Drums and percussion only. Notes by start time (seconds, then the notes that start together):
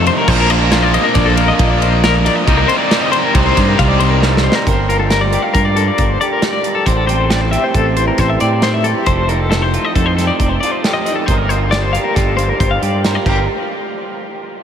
0.06 ride
0.28 kick, crash
0.50 ride
0.72 snare, ride
0.94 ride
1.15 kick, snare, ride
1.37 ride
1.59 kick, ride
1.82 ride
2.04 snare, ride
2.26 snare, ride
2.48 kick, ride
2.69 ride
2.91 snare, ride
3.13 ride
3.35 kick, ride
3.57 kick, snare, ride
3.79 kick, snare, ride
4.00 ride
4.22 snare
4.37 snare
4.52 snare
4.67 kick, closed hi-hat
4.90 closed hi-hat
5.11 snare, closed hi-hat
5.33 closed hi-hat
5.54 kick, closed hi-hat
5.77 closed hi-hat
5.98 kick, closed hi-hat
6.21 closed hi-hat
6.42 snare, closed hi-hat
6.64 closed hi-hat
6.86 kick, closed hi-hat
7.09 closed hi-hat
7.30 snare, closed hi-hat
7.53 closed hi-hat
7.75 kick, closed hi-hat
7.97 closed hi-hat
8.18 kick, snare, closed hi-hat
8.40 closed hi-hat
8.62 snare, closed hi-hat
8.84 closed hi-hat
9.06 kick, closed hi-hat
9.29 closed hi-hat
9.52 snare, closed hi-hat
9.74 closed hi-hat
9.96 kick, closed hi-hat
10.18 snare, closed hi-hat
10.40 kick, closed hi-hat
10.63 closed hi-hat
10.84 snare, closed hi-hat
11.06 closed hi-hat
11.28 kick, closed hi-hat
11.50 closed hi-hat
11.72 snare, closed hi-hat
11.95 closed hi-hat
12.16 kick, snare, closed hi-hat
12.39 closed hi-hat
12.60 kick, closed hi-hat
12.83 closed hi-hat
13.05 snare, closed hi-hat
13.26 kick, crash